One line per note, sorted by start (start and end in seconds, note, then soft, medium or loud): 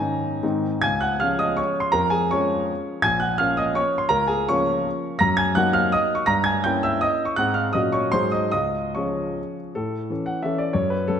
0.00 0.43 G#2 medium
0.00 0.38 D#3 soft
0.00 0.39 C#4 soft
0.00 0.39 D#4 soft
0.00 0.62 G#5 medium
0.00 0.45 A#5 medium
0.43 0.82 G#2 medium
0.43 0.79 D#3 soft
0.43 0.79 C4 soft
0.43 0.80 D#4 soft
0.82 1.20 C#2 medium
0.82 1.00 G#5 medium
0.82 1.01 G#6 loud
1.01 1.20 F#5 medium
1.01 1.20 F#6 medium
1.20 1.89 F3 soft
1.20 1.89 G#3 soft
1.20 1.90 C#4 soft
1.20 1.38 F5 medium
1.20 1.39 F6 medium
1.39 1.57 D#5 medium
1.39 1.58 D#6 medium
1.57 1.80 C#5 medium
1.57 1.81 C#6 medium
1.80 1.93 C6 medium
1.92 2.32 F2 medium
1.92 2.11 A#4 medium
1.92 2.12 A#5 loud
2.10 2.31 G#4 medium
2.10 2.32 G#5 medium
2.31 3.00 F3 soft
2.31 3.01 G#3 soft
2.31 3.01 C#4 soft
2.31 3.00 C#5 medium
2.31 3.04 C#6 medium
3.02 3.39 A#1 medium
3.02 3.20 G#5 medium
3.02 3.21 G#6 loud
3.20 3.38 F#5 soft
3.20 3.39 F#6 medium
3.38 4.06 F3 soft
3.38 4.06 A#3 soft
3.38 4.06 C#4 soft
3.38 3.57 F5 medium
3.38 3.58 F6 medium
3.57 3.75 D#5 medium
3.57 3.76 D#6 medium
3.75 3.97 C#5 medium
3.75 3.98 C#6 medium
3.98 4.10 C6 medium
4.09 4.48 C#2 medium
4.09 4.27 A#4 medium
4.09 4.28 A#5 loud
4.27 4.47 G#4 medium
4.27 4.48 G#5 medium
4.49 5.16 F3 soft
4.49 5.16 A#3 soft
4.49 5.17 C#4 medium
4.49 5.16 C#5 medium
4.49 5.20 C#6 loud
5.19 5.56 F#2 medium
5.19 5.37 A#5 medium
5.19 5.37 A#6 loud
5.37 5.55 G#5 medium
5.37 5.56 G#6 medium
5.55 6.24 F#3 medium
5.55 6.24 A#3 soft
5.55 6.24 D#4 soft
5.55 5.74 F#5 medium
5.55 5.74 F#6 loud
5.73 5.91 F5 medium
5.73 5.92 F6 loud
5.92 6.15 D#5 medium
5.92 6.16 D#6 loud
6.15 6.27 C#6 medium
6.26 6.63 G2 medium
6.26 6.44 A#5 medium
6.26 6.45 A#6 loud
6.44 6.63 G#5 medium
6.44 6.63 G#6 medium
6.64 7.34 A#3 soft
6.64 7.34 C#4 soft
6.64 7.34 E4 soft
6.64 6.82 G5 medium
6.64 6.83 G6 medium
6.83 7.01 E5 medium
6.83 7.02 E6 medium
7.01 7.24 D#5 medium
7.01 7.25 D#6 medium
7.25 7.37 C#6 medium
7.36 7.73 G#2 medium
7.36 7.70 G#3 soft
7.36 7.71 C4 soft
7.36 7.71 D#4 soft
7.36 7.54 F#5 medium
7.36 7.54 F#6 loud
7.54 7.72 F5 medium
7.54 7.73 F6 medium
7.73 8.12 A#2 medium
7.73 8.09 F#3 soft
7.73 8.09 C#4 soft
7.73 8.10 F#4 soft
7.73 7.92 D#5 medium
7.73 7.92 D#6 medium
7.92 8.11 C#5 medium
7.92 8.12 C#6 medium
8.12 8.51 G#2 medium
8.12 8.49 F#3 soft
8.12 8.49 D#4 soft
8.12 8.49 G#4 soft
8.12 8.31 C5 medium
8.12 8.32 C6 medium
8.32 8.51 D#5 medium
8.32 8.50 D#6 medium
8.52 8.95 C#2 medium
8.52 8.92 D#5 medium
8.52 8.95 D#6 medium
8.95 9.73 F3 soft
8.95 9.73 C#4 soft
8.95 9.73 G#4 soft
8.95 9.55 C#5 soft
8.95 9.58 C#6 medium
9.75 10.10 A2 soft
9.75 10.10 A4 medium
10.10 10.40 E3 soft
10.10 10.41 C#4 soft
10.10 10.41 A4 soft
10.26 10.43 F#5 medium
10.43 10.73 E3 soft
10.43 10.73 C#4 soft
10.43 10.73 A4 medium
10.43 10.59 E5 medium
10.58 10.75 D5 medium
10.73 11.08 F#2 medium
10.73 10.91 C#5 medium
10.90 11.08 B4 medium
11.08 11.20 F#3 soft
11.08 11.20 C#4 soft
11.08 11.20 A4 medium